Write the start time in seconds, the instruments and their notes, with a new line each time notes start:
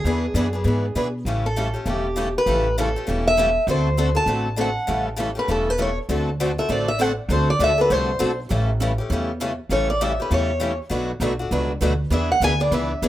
Already playing: steel-string acoustic guitar G#4
0.04 upright bass E2, steel-string acoustic guitar E3 B3 D4 G#4 B4
0.34 upright bass F#2, steel-string acoustic guitar E3 B3 D4 G#4 B4
0.53 steel-string acoustic guitar B3 D4 G#4
0.64 upright bass G#2, steel-string acoustic guitar E3 B3 D4 G#4 B4
0.95 upright bass B2, steel-string acoustic guitar E3 B3 D4 G#4 B4
1.25 upright bass A1, steel-string acoustic guitar C#3 E3 G3 A3 C#4 E4 G4 A4
1.46 steel-string acoustic guitar A4
1.56 steel-string acoustic guitar C#3 E3 G3 A3 C#4 E4 G4 A4
1.74 steel-string acoustic guitar A3 C#4 G4
1.86 upright bass E1, steel-string acoustic guitar C#3 E3 G3 A3 C#4 E4 G4 A4
2.16 steel-string acoustic guitar C#3 E3 G3 A3 C#4 E4 G4 A4
2.38 steel-string acoustic guitar B4
2.46 upright bass A1, steel-string acoustic guitar C#3 E3 G3 A3 C#4 E4 G4 A4
2.78 steel-string acoustic guitar C#3 E3 G3 A3 C#4 E4 G4 A4
2.96 steel-string acoustic guitar A3 C#4 G4
3.07 upright bass E1, steel-string acoustic guitar C#3 E3 G3 A3 C#4 E4 G4 A4
3.27 steel-string acoustic guitar E5
3.37 steel-string acoustic guitar C#3 E3 G3 A3 C#4 E4 G4 A4
3.67 upright bass D2, steel-string acoustic guitar D3 A3 C4 F#4 A4 C5
3.98 steel-string acoustic guitar D3 A3 C4 F#4 A4
4.15 steel-string acoustic guitar C4 F#4 A4 A5
4.26 upright bass A1, steel-string acoustic guitar D3 A3 C4 F#4 A4
4.56 steel-string acoustic guitar D3 A3 C4 F#4 A4
4.61 steel-string acoustic guitar F#5
4.87 upright bass A1, steel-string acoustic guitar C#3 E3 G3 A3 C#4 E4 G4 A4
5.16 steel-string acoustic guitar C#3 E3 G3 A3 C#4 E4 G4 A4
5.35 steel-string acoustic guitar A3 C#4 G4 B4
5.48 upright bass E1, steel-string acoustic guitar C#3 E3 G3 A3 C#4 E4 G4 A4
5.70 steel-string acoustic guitar B4
5.78 steel-string acoustic guitar C#3 E3 G3 A3 C#4 E4 G4 A4
5.82 steel-string acoustic guitar C#5
6.09 upright bass D2, steel-string acoustic guitar D3 A3 C4 F#4 A4
6.40 steel-string acoustic guitar D3 A3 C4 F#4 A4
6.58 steel-string acoustic guitar C4 F#4 A4 E5
6.69 upright bass A1, steel-string acoustic guitar D3 A3 C4 F#4 A4 D5
6.88 steel-string acoustic guitar E5
7.00 steel-string acoustic guitar D3 A3 C4 F#4 A4 F#5
7.29 upright bass D2, steel-string acoustic guitar D3 A3 C4 F#4 A4 C5
7.50 steel-string acoustic guitar D5
7.59 upright bass D2, steel-string acoustic guitar D3 A3 C4 F#4 A4
7.64 steel-string acoustic guitar E5
7.78 steel-string acoustic guitar C4 F#4 A4 B4
7.90 upright bass C2, steel-string acoustic guitar D3 A3 C4 F#4 A4 C5
8.19 upright bass B1, steel-string acoustic guitar D3 A3 C4 F#4 A4
8.50 upright bass A1, steel-string acoustic guitar C#3 E3 G3 A3 C#4 E4 G4 A4
8.80 steel-string acoustic guitar C#3 E3 G3 A3 C#4 E4 G4 A4
8.98 steel-string acoustic guitar A3 C#4 G4
9.10 upright bass E2, steel-string acoustic guitar C#3 E3 G3 A3 C#4 E4 G4 A4
9.40 steel-string acoustic guitar C#3 E3 G3 A3 C#4 E4 G4 A4
9.69 upright bass A1, steel-string acoustic guitar C#3 E3 G3 A3 C#4 E4 G4 A4 C#5
9.90 steel-string acoustic guitar D5
10.01 steel-string acoustic guitar C#3 E3 G3 A3 C#4 E4 G4 A4 E5
10.20 steel-string acoustic guitar A3 C#4 G4 B4
10.31 upright bass E2, steel-string acoustic guitar C#3 E3 G3 A3 C#4 E4 G4 A4 C#5
10.60 steel-string acoustic guitar C#3 E3 G3 A3 C#4 E4 G4 A4
10.89 upright bass B1, steel-string acoustic guitar B2 F#3 A3 D4 F#4 B4
11.20 upright bass B1, steel-string acoustic guitar B2 F#3 A3 D4 F#4 B4
11.39 steel-string acoustic guitar A3 D4 F#4
11.51 upright bass C#2, steel-string acoustic guitar B2 F#3 A3 D4 F#4 B4
11.81 upright bass D2, steel-string acoustic guitar B2 F#3 A3 D4 F#4 B4
12.11 upright bass E2, steel-string acoustic guitar E3 B3 D4 G#4 B4 E5
12.32 steel-string acoustic guitar F#5
12.40 upright bass D2, steel-string acoustic guitar E3 B3 D4 G#4 B4 G#5
12.60 steel-string acoustic guitar B3 D4 G#4 D5
12.71 upright bass C#2, steel-string acoustic guitar E3 B3 D4 G#4 B4 E5
13.02 upright bass B1, steel-string acoustic guitar E3 B3 D4 G#4 B4